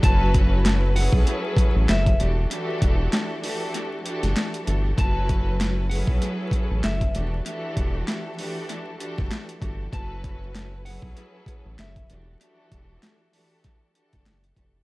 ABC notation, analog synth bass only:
X:1
M:4/4
L:1/16
Q:"Swing 16ths" 1/4=97
K:Edor
V:1 name="Analog synth bass" clef=bass
F,,,6- F,,, B,,, z3 A,,, F,,,2 E,,,2 | z2 E,,,2 z6 z F,,, z2 G,,,2 | F,,,6- F,,, B,,, z3 A,,, F,,,2 E,,,2 | z2 E,,,2 z6 z F,,, z2 G,,,2 |
F,,,6- F,,, B,,, z3 A,,, F,,,2 E,,,2 | z2 E,,,2 z6 z F,,, F,,,2 ^E,,,2 |]